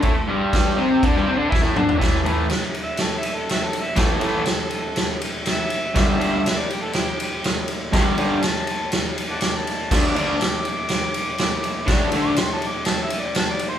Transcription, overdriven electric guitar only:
X:1
M:4/4
L:1/16
Q:1/4=122
K:Glyd
V:1 name="Overdriven electric guitar" clef=bass
[A,,A,] z [G,,G,]4 [=C,=C]2 [D,D] [G,,G,] [C,C] [D,D] [E,E] [A,,A,] [D,D]2 | [A,,E,A,]2 [A,,E,A,]2 z12 | [A,,E,A,]2 [A,,E,A,]2 z12 | [G,,D,G,]2 [G,,D,G,]2 z12 |
[G,,D,G,]2 [G,,D,G,]2 z12 | [D,A,D]2 [D,A,D]2 z12 | [D,A,D]2 [D,A,D]2 z12 |]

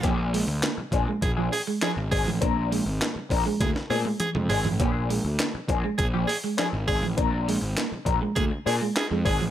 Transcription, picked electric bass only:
X:1
M:4/4
L:1/16
Q:1/4=101
K:Bbmix
V:1 name="Picked electric bass" clef=bass
B,,,3 D,, z2 B,,, z B,,,2 z3 A,,, A,,, =A,,, | B,,,3 A,,, z2 B,,, z D,, z B,, z2 F,, A,,, =A,,, | B,,,3 D,, z2 B,,, z B,,,2 z3 A,,, A,,, =A,,, | B,,,3 A,,, z2 B,,, z D,, z B,, z2 F,, A,,, =A,,, |]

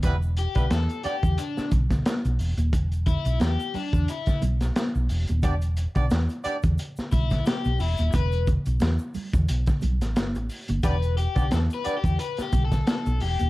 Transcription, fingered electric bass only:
X:1
M:4/4
L:1/16
Q:"Swing 16ths" 1/4=89
K:Em
V:1 name="Fingered electric bass" clef=bass
E,,,3 B,,, E,, z2 E,, z2 B,,,2 z B,,, E,,, ^D,,, | E,,,3 B,,, E,, z2 E,, z2 B,,,2 z B,,, E,,, ^D,,, | E,,,3 B,,, E,, z2 E,, z2 B,,,2 z B,,, E,,, ^D,,, | E,,,3 B,,, E,, z2 E,, B,,, z B,,, A,,, G,,, A,,, z G,,, |
E,,,3 B,,, E,, z2 E,, z2 B,,,2 z B,,, E,,, ^D,,, |]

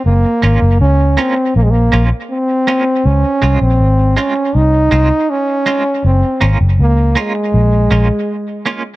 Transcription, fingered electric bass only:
X:1
M:4/4
L:1/16
Q:1/4=80
K:Gblyd
V:1 name="Fingered electric bass" clef=bass
G,,, z A,,, G,,, D,,2 z2 B,,,2 B,,, z4 z | D,, z C,, B,,, A,,,2 z2 C,,2 C,, z4 z | G,,, z A,,, G,,, D,,2 z2 B,,,2 B,,, z4 z |]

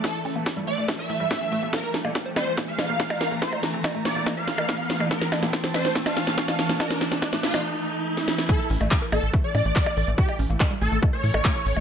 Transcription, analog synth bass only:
X:1
M:4/4
L:1/16
Q:1/4=142
K:none
V:1 name="Analog synth bass" clef=bass
z2 A,,, A,,, z2 A,,, A,,, z2 A,, A,,, z2 A,,, A,,, | z2 _B,,, B,,, z2 B,,, B,,, z2 _B,, B,,, z2 B,,, B,,, | z2 _B,,, B,,, z2 B,,, B,,, z2 _B,, B,,, z2 B,,, B,,, | z2 _B,,, B,,, z2 B,,, B,,, z2 _B,, B,,, z2 B,,, B,,, |
z2 _B,,, B,,, z2 B,,, B,,, z8 | z2 A,,, A,,, z2 A,,, A,,, z2 A,, A,,, z2 A,,, A,,, | z2 A,,, A,,, z2 A,,, A,,, z2 A,, A,,, z2 A,,, A,,, |]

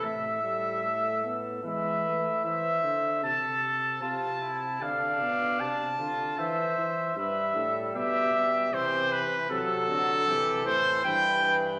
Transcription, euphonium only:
X:1
M:3/4
L:1/8
Q:1/4=77
K:Am
V:1 name="Euphonium" clef=bass
A, G, A, B, ^G, A, | z6 | z6 | G,4 E,2 |
^F,2 E,2 E,2 |]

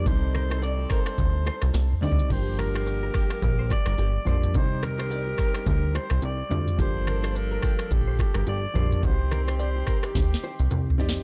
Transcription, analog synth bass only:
X:1
M:4/4
L:1/16
Q:"Swing 16ths" 1/4=107
K:Cdor
V:1 name="Analog synth bass" clef=bass
C,,6 z2 D,,3 C,, C,,2 D,,2 | G,,,6 z2 B,,,3 G,,, G,,,2 B,,,2 | C,,6 z2 D,,3 C,, C,,2 D,,2 | G,,,6 z2 B,,,3 G,,, G,,,2 B,,,2 |
C,,6 z2 D,,2 z C,, C,,2 F,,,2 |]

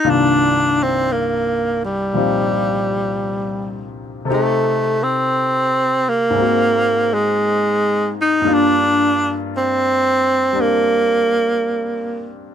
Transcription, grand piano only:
X:1
M:4/4
L:1/8
Q:"Swing" 1/4=57
K:Cm
V:1 name="Grand piano"
[C,,G,,E,B,DF]4 [B,,F,CEG]4 | [C,CEG=A]4 [_A,,A,B,C_G]4 | [G,,G,B,DF]4 [G,CD]4 |]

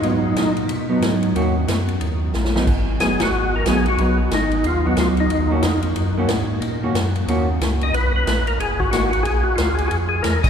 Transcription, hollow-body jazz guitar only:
X:1
M:4/4
L:1/8
Q:"Swing" 1/4=182
K:Ebm
V:1 name="Hollow-body jazz guitar"
[G,CE]3 z2 [G,CE]3 | [E,B,DG] z6 [G,CE] | z2 [G,CE] z3 [G,CE] z | [G,CE] z4 [G,CE]3 |
z [E,B,DG] z3 [E,B,DG] z2 | z [E,B,DG] z2 [E,B,DG] z3 | z6 [^A,^D^F] z | z8 |]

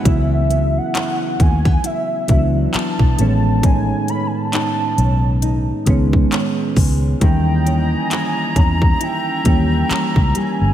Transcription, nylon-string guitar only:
X:1
M:4/4
L:1/16
Q:"Swing 16ths" 1/4=67
K:C#m
V:1 name="Nylon-string guitar"
[C,E]2 B,2 E2 A, B, E2 F,2 B,2 A,,2 | [A,,D]2 C2 D2 C2 D2 G,2 C2 G,2 | [D,E]2 C2 E2 C2 E2 =G,2 C2 G,2 |]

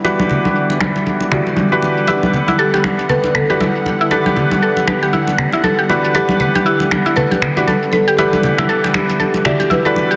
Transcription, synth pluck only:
X:1
M:4/4
L:1/16
Q:"Swing 16ths" 1/4=118
K:Em
V:1 name="Synth pluck"
z16 | E z2 E A G z2 A z B G E z2 E | A G z2 A z B G E z2 E A G z2 | A z B G E z2 E A G z2 A z B G |
E z2 E A G z2 A z e G E A z G |]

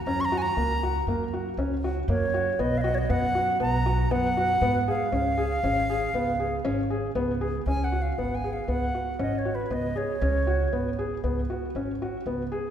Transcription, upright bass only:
X:1
M:5/4
L:1/8
Q:1/4=118
K:Dbmix
V:1 name="Upright bass" clef=bass
G,,2 D,,2 G,,2 D,,2 G,,2 | =B,,,2 ^F,,2 B,,,2 F,,2 A,,2 | D,,2 A,,,2 D,,2 A,,,2 D,,2 | D,,2 A,,,2 D,, z A,,,2 D,, z |
D,,2 A,,,2 D,, z A,,,2 D,, z |]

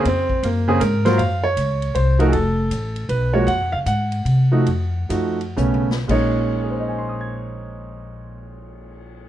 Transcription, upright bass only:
X:1
M:3/4
L:1/8
Q:"Swing" 1/4=153
K:Bbm
V:1 name="Upright bass" clef=bass
F,,2 G,,2 A,,2 | G,,2 D,,2 C,,2 | F,,,2 =A,,,2 =B,,,2 | (3G,, F,, D,, A,,2 C,2 |
F,,2 G,,2 =B,,,2 | B,,,6- | B,,,6 |]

